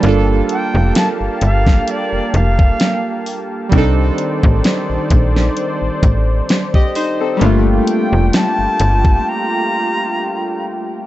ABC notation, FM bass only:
X:1
M:4/4
L:1/16
Q:"Swing 16ths" 1/4=65
K:Gm
V:1 name="FM bass" clef=bass
G,,,2 z F,,, z G,,, G,,,2 z F,,, F,,,2 z4 | C,,2 z A,,, z B,,, B,,,2 z A,,, A,,,2 z4 | G,,,2 z F,,, z G,,, G,,,2 z8 |]